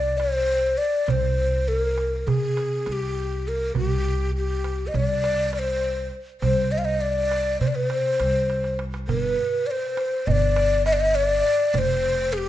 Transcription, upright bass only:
0, 0, Header, 1, 2, 480
1, 0, Start_track
1, 0, Tempo, 592300
1, 874, Time_signature, 9, 3, 24, 8
1, 10120, End_track
2, 0, Start_track
2, 0, Title_t, "Upright bass"
2, 0, Program_c, 0, 32
2, 0, Note_on_c, 0, 36, 78
2, 600, Note_off_c, 0, 36, 0
2, 874, Note_on_c, 0, 36, 91
2, 1804, Note_off_c, 0, 36, 0
2, 1837, Note_on_c, 0, 48, 85
2, 2286, Note_off_c, 0, 48, 0
2, 2323, Note_on_c, 0, 36, 77
2, 3010, Note_off_c, 0, 36, 0
2, 3045, Note_on_c, 0, 36, 85
2, 3972, Note_off_c, 0, 36, 0
2, 4003, Note_on_c, 0, 36, 88
2, 4931, Note_off_c, 0, 36, 0
2, 5204, Note_on_c, 0, 36, 89
2, 6131, Note_off_c, 0, 36, 0
2, 6164, Note_on_c, 0, 48, 87
2, 6611, Note_off_c, 0, 48, 0
2, 6645, Note_on_c, 0, 36, 75
2, 7330, Note_off_c, 0, 36, 0
2, 7363, Note_on_c, 0, 31, 87
2, 7582, Note_off_c, 0, 31, 0
2, 8325, Note_on_c, 0, 31, 91
2, 9244, Note_off_c, 0, 31, 0
2, 9513, Note_on_c, 0, 29, 92
2, 10120, Note_off_c, 0, 29, 0
2, 10120, End_track
0, 0, End_of_file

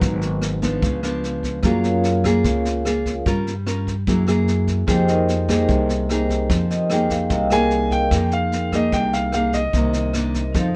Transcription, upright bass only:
0, 0, Header, 1, 2, 480
1, 0, Start_track
1, 0, Key_signature, -4, "minor"
1, 0, Tempo, 404858
1, 31, Time_signature, 4, 2, 24, 8
1, 12756, End_track
2, 0, Start_track
2, 0, Title_t, "Upright bass"
2, 0, Program_c, 0, 32
2, 20, Note_on_c, 0, 32, 95
2, 937, Note_off_c, 0, 32, 0
2, 979, Note_on_c, 0, 37, 94
2, 1897, Note_off_c, 0, 37, 0
2, 1936, Note_on_c, 0, 42, 94
2, 2855, Note_off_c, 0, 42, 0
2, 2901, Note_on_c, 0, 37, 85
2, 3817, Note_off_c, 0, 37, 0
2, 3863, Note_on_c, 0, 43, 90
2, 4778, Note_off_c, 0, 43, 0
2, 4826, Note_on_c, 0, 42, 93
2, 5740, Note_off_c, 0, 42, 0
2, 5784, Note_on_c, 0, 41, 98
2, 6699, Note_off_c, 0, 41, 0
2, 6740, Note_on_c, 0, 36, 96
2, 7657, Note_off_c, 0, 36, 0
2, 7704, Note_on_c, 0, 41, 93
2, 8619, Note_off_c, 0, 41, 0
2, 8655, Note_on_c, 0, 36, 100
2, 9575, Note_off_c, 0, 36, 0
2, 9618, Note_on_c, 0, 41, 85
2, 10537, Note_off_c, 0, 41, 0
2, 10579, Note_on_c, 0, 36, 89
2, 11498, Note_off_c, 0, 36, 0
2, 11537, Note_on_c, 0, 36, 85
2, 12458, Note_off_c, 0, 36, 0
2, 12503, Note_on_c, 0, 41, 94
2, 12756, Note_off_c, 0, 41, 0
2, 12756, End_track
0, 0, End_of_file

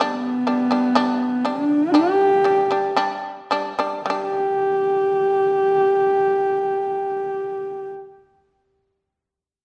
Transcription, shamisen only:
0, 0, Header, 1, 2, 480
1, 0, Start_track
1, 0, Time_signature, 4, 2, 24, 8
1, 0, Tempo, 966184
1, 960, Tempo, 1036269
1, 1440, Tempo, 1098901
1, 1920, Tempo, 1134216
1, 4281, End_track
2, 0, Start_track
2, 0, Title_t, "Shamisen"
2, 0, Program_c, 0, 106
2, 0, Note_on_c, 0, 55, 84
2, 4, Note_on_c, 0, 62, 91
2, 185, Note_off_c, 0, 55, 0
2, 188, Note_off_c, 0, 62, 0
2, 233, Note_on_c, 0, 55, 60
2, 235, Note_on_c, 0, 62, 62
2, 327, Note_off_c, 0, 55, 0
2, 328, Note_off_c, 0, 62, 0
2, 351, Note_on_c, 0, 55, 64
2, 356, Note_on_c, 0, 62, 73
2, 446, Note_off_c, 0, 55, 0
2, 448, Note_off_c, 0, 62, 0
2, 474, Note_on_c, 0, 55, 82
2, 478, Note_on_c, 0, 62, 99
2, 665, Note_off_c, 0, 55, 0
2, 667, Note_off_c, 0, 62, 0
2, 719, Note_on_c, 0, 55, 58
2, 722, Note_on_c, 0, 62, 68
2, 913, Note_off_c, 0, 55, 0
2, 915, Note_off_c, 0, 62, 0
2, 963, Note_on_c, 0, 55, 77
2, 967, Note_on_c, 0, 62, 86
2, 1150, Note_off_c, 0, 55, 0
2, 1152, Note_off_c, 0, 62, 0
2, 1197, Note_on_c, 0, 55, 62
2, 1201, Note_on_c, 0, 62, 67
2, 1293, Note_off_c, 0, 55, 0
2, 1295, Note_off_c, 0, 62, 0
2, 1318, Note_on_c, 0, 55, 64
2, 1323, Note_on_c, 0, 62, 62
2, 1415, Note_off_c, 0, 55, 0
2, 1418, Note_off_c, 0, 62, 0
2, 1438, Note_on_c, 0, 55, 80
2, 1442, Note_on_c, 0, 62, 85
2, 1627, Note_off_c, 0, 55, 0
2, 1629, Note_off_c, 0, 62, 0
2, 1676, Note_on_c, 0, 55, 72
2, 1680, Note_on_c, 0, 62, 84
2, 1772, Note_off_c, 0, 55, 0
2, 1774, Note_off_c, 0, 62, 0
2, 1797, Note_on_c, 0, 55, 70
2, 1801, Note_on_c, 0, 62, 79
2, 1895, Note_off_c, 0, 55, 0
2, 1897, Note_off_c, 0, 62, 0
2, 1915, Note_on_c, 0, 55, 66
2, 1934, Note_on_c, 0, 62, 78
2, 3538, Note_off_c, 0, 55, 0
2, 3557, Note_off_c, 0, 62, 0
2, 4281, End_track
0, 0, End_of_file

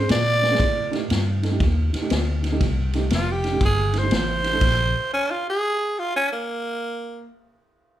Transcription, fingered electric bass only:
0, 0, Header, 1, 3, 480
1, 0, Start_track
1, 0, Tempo, 503356
1, 568, Time_signature, 4, 2, 24, 8
1, 7629, End_track
2, 0, Start_track
2, 0, Title_t, "Fingered electric bass"
2, 0, Program_c, 0, 33
2, 94, Note_on_c, 0, 46, 80
2, 557, Note_off_c, 0, 46, 0
2, 569, Note_on_c, 0, 45, 89
2, 1034, Note_off_c, 0, 45, 0
2, 1058, Note_on_c, 0, 43, 94
2, 1519, Note_off_c, 0, 43, 0
2, 1530, Note_on_c, 0, 39, 84
2, 1821, Note_off_c, 0, 39, 0
2, 2013, Note_on_c, 0, 38, 89
2, 2476, Note_off_c, 0, 38, 0
2, 2486, Note_on_c, 0, 36, 90
2, 2952, Note_off_c, 0, 36, 0
2, 2964, Note_on_c, 0, 29, 84
2, 3431, Note_off_c, 0, 29, 0
2, 3442, Note_on_c, 0, 31, 87
2, 3910, Note_off_c, 0, 31, 0
2, 3917, Note_on_c, 0, 33, 80
2, 4387, Note_off_c, 0, 33, 0
2, 4402, Note_on_c, 0, 34, 84
2, 4696, Note_off_c, 0, 34, 0
2, 7629, End_track
3, 0, Start_track
3, 0, Title_t, "Muted fingered electric bass strokes"
3, 1851, Note_on_c, 9, 29, 33
3, 1946, Note_off_c, 9, 29, 0
3, 7629, End_track
0, 0, End_of_file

